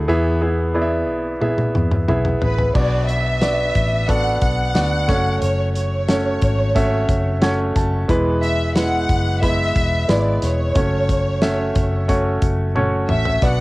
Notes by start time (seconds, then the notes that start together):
Already playing: A3 E4 F#4 G#4 D5
0.08 E2 E3 B3 E4 G#4 E5
0.41 B3 E4 G#4 E5
0.74 B3 E4 G#4 D5
0.82 E5
1.08 B1
1.41 B3 E4 G#4 E5, high tom
1.58 high tom
1.75 E2, mid tom
1.91 mid tom
2.08 B1 B3 E4 G#4 E5, mid tom
2.25 mid tom
2.42 A1 B4, floor tom
2.58 floor tom
2.75 B1 B2 B3 D4 F#4 D5, kick, crash
3.08 E5, closed hi-hat
3.41 B3 D4 F#4 D5, snare, closed hi-hat
3.75 A1, kick, closed hi-hat
4.08 B3 D4 F#4 A4 F#5, kick, closed hi-hat
4.41 B1 F#5, kick, closed hi-hat
4.74 D2 B3 D4 F#4 D5, snare, closed hi-hat
5.08 F#1 A3 C#4 F#4 C#5, kick, snare, closed hi-hat
5.42 F#1 C#5, closed hi-hat
5.75 C#5, closed hi-hat
6.08 A3 C#4 F#4 C#5, snare, closed hi-hat
6.42 G#1, kick, closed hi-hat
6.75 A3 C#4 F#4 E5, kick, closed hi-hat
7.09 F#1, kick, closed hi-hat
7.42 A3 C#4 F#4 C#5 F#5, snare, closed hi-hat
7.76 F#1 A5, kick, closed hi-hat
8.09 E1 E3 G#3 B3 E4 B4, kick, closed hi-hat
8.43 E5, closed hi-hat
8.75 G#3 B3 E4 B4 F#5, snare, closed hi-hat
9.09 F#1, kick, closed hi-hat
9.42 G#3 B3 E4 B4 E5, kick, closed hi-hat
9.76 E1, kick, closed hi-hat
10.08 G#1 G#3 B3 E4 B4 D5, snare, closed hi-hat
10.42 E1 C#5, snare, closed hi-hat
10.75 F#1 A3 C#4 F#4 C#5, kick, closed hi-hat
11.09 kick, closed hi-hat
11.42 A3 C#4 F#4 E5, snare, closed hi-hat
11.75 F#1, kick, closed hi-hat
12.08 A3 C#4 F#4 C#5, kick, closed hi-hat
12.42 F#1, kick, closed hi-hat
12.75 A3 C#4 F#4 C#5, high tom
13.09 A1 E5, mid tom
13.25 floor tom
13.42 B1 B2 B3 D4 F#4 D5 F#5, kick, closed hi-hat